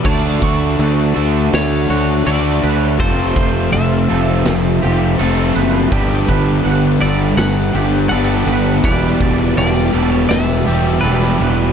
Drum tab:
CC |x-x-x-x-x-x-x-x-|x-x-x-x-x-x-x-x-|x-x-x-x-x-x-x-x-|x-x-x-x-x-x-x-x-|
SD |--------o-------|--------o-------|--------o-------|--------o----o--|
BD |o-o-------------|o-o-------------|o-o-------------|o-o-------------|